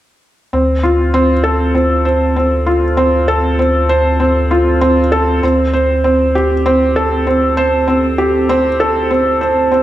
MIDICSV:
0, 0, Header, 1, 3, 480
1, 0, Start_track
1, 0, Key_signature, -1, "minor"
1, 0, Tempo, 612245
1, 415, Time_signature, 4, 2, 24, 8
1, 7705, End_track
2, 0, Start_track
2, 0, Title_t, "Felt piano"
2, 0, Program_c, 0, 0
2, 416, Note_on_c, 0, 60, 70
2, 572, Control_c, 0, 64, 127
2, 643, Note_off_c, 0, 60, 0
2, 654, Note_on_c, 0, 65, 67
2, 882, Note_off_c, 0, 65, 0
2, 892, Note_on_c, 0, 60, 89
2, 1030, Note_off_c, 0, 60, 0
2, 1126, Note_on_c, 0, 69, 80
2, 1359, Note_off_c, 0, 69, 0
2, 1369, Note_on_c, 0, 60, 68
2, 1600, Note_off_c, 0, 60, 0
2, 1609, Note_on_c, 0, 72, 64
2, 1840, Note_off_c, 0, 72, 0
2, 1853, Note_on_c, 0, 60, 68
2, 2082, Note_off_c, 0, 60, 0
2, 2090, Note_on_c, 0, 65, 69
2, 2229, Note_off_c, 0, 65, 0
2, 2330, Note_on_c, 0, 60, 87
2, 2561, Note_off_c, 0, 60, 0
2, 2572, Note_on_c, 0, 69, 88
2, 2802, Note_off_c, 0, 69, 0
2, 2814, Note_on_c, 0, 60, 69
2, 3043, Note_off_c, 0, 60, 0
2, 3052, Note_on_c, 0, 72, 84
2, 3282, Note_off_c, 0, 72, 0
2, 3292, Note_on_c, 0, 60, 76
2, 3521, Note_off_c, 0, 60, 0
2, 3535, Note_on_c, 0, 65, 65
2, 3763, Note_off_c, 0, 65, 0
2, 3774, Note_on_c, 0, 60, 89
2, 3911, Note_off_c, 0, 60, 0
2, 4014, Note_on_c, 0, 69, 86
2, 4242, Note_off_c, 0, 69, 0
2, 4259, Note_on_c, 0, 60, 73
2, 4266, Control_c, 0, 64, 0
2, 4410, Control_c, 0, 64, 127
2, 4485, Note_off_c, 0, 60, 0
2, 4496, Note_on_c, 0, 72, 71
2, 4724, Note_off_c, 0, 72, 0
2, 4737, Note_on_c, 0, 60, 73
2, 4964, Note_off_c, 0, 60, 0
2, 4981, Note_on_c, 0, 67, 67
2, 5115, Note_off_c, 0, 67, 0
2, 5219, Note_on_c, 0, 60, 93
2, 5445, Note_off_c, 0, 60, 0
2, 5457, Note_on_c, 0, 69, 89
2, 5684, Note_off_c, 0, 69, 0
2, 5698, Note_on_c, 0, 60, 67
2, 5924, Note_off_c, 0, 60, 0
2, 5935, Note_on_c, 0, 72, 88
2, 6163, Note_off_c, 0, 72, 0
2, 6175, Note_on_c, 0, 60, 75
2, 6403, Note_off_c, 0, 60, 0
2, 6415, Note_on_c, 0, 67, 69
2, 6643, Note_off_c, 0, 67, 0
2, 6659, Note_on_c, 0, 60, 94
2, 6794, Note_off_c, 0, 60, 0
2, 6899, Note_on_c, 0, 69, 90
2, 7125, Note_off_c, 0, 69, 0
2, 7139, Note_on_c, 0, 60, 72
2, 7365, Note_off_c, 0, 60, 0
2, 7378, Note_on_c, 0, 72, 68
2, 7604, Note_off_c, 0, 72, 0
2, 7616, Note_on_c, 0, 60, 66
2, 7705, Note_off_c, 0, 60, 0
2, 7705, End_track
3, 0, Start_track
3, 0, Title_t, "Sub bass"
3, 0, Program_c, 1, 38
3, 414, Note_on_c, 1, 38, 78
3, 4230, Note_off_c, 1, 38, 0
3, 4250, Note_on_c, 1, 38, 83
3, 7705, Note_off_c, 1, 38, 0
3, 7705, End_track
0, 0, End_of_file